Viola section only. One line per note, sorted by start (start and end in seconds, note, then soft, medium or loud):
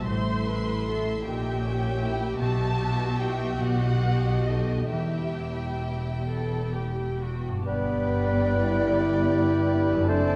0.08 0.47 C5 soft
0.49 0.88 B4 soft
0.88 1.26 A4 soft
1.27 4.87 G4 soft
4.92 6.15 G4 soft
6.27 6.70 A4 soft
6.73 7.20 G4 soft
7.23 7.68 F#4 soft
7.67 10.05 B3 soft
10.11 10.36 C4 medium